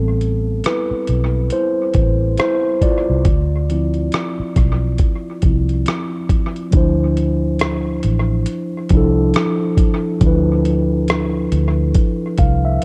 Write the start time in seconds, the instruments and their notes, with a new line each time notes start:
Already playing: fingered electric bass A1, tine electric piano G3 B3 C4 A4
0.21 closed hi-hat
0.64 tine electric piano E4 B4, cross-stick, closed hi-hat
0.91 muted fingered electric bass stroke
1.07 fingered electric bass B1, closed hi-hat
1.50 tine electric piano E4 C5, closed hi-hat
1.94 fingered electric bass A1, kick, closed hi-hat
2.37 tine electric piano E4 C5, cross-stick, closed hi-hat
2.81 tine electric piano F4 D5, kick, closed hi-hat
3.10 fingered electric bass C2
3.25 fingered electric bass D2, kick, closed hi-hat
3.70 tine electric piano F3 C4 E4, closed hi-hat
3.94 closed hi-hat
4.12 cross-stick, closed hi-hat
4.39 muted fingered electric bass stroke
4.56 fingered electric bass B1, kick, cross-stick, closed hi-hat
4.98 kick, closed hi-hat
5.42 fingered electric bass C2, tine electric piano F3 C4 E4, kick, closed hi-hat
5.69 closed hi-hat
5.86 cross-stick, closed hi-hat
6.29 kick, closed hi-hat
6.56 closed hi-hat
6.71 fingered electric bass D2, tine electric piano F3 D4 E4, kick, closed hi-hat
6.77 tine electric piano C5
7.17 closed hi-hat
7.59 cross-stick, closed hi-hat
8.03 fingered electric bass A1, closed hi-hat
8.46 closed hi-hat
8.89 fingered electric bass C2, tine electric piano F3 D4, kick, closed hi-hat
8.95 tine electric piano E4 A4
9.34 cross-stick, closed hi-hat
9.77 kick, closed hi-hat
10.21 fingered electric bass D2, tine electric piano F3 D4 E4, kick, closed hi-hat
10.27 tine electric piano B4
10.65 closed hi-hat
11.08 cross-stick, closed hi-hat
11.52 fingered electric bass D2, closed hi-hat
11.94 kick, closed hi-hat
12.38 fingered electric bass C2, tine electric piano F5, kick, closed hi-hat
12.65 tine electric piano E5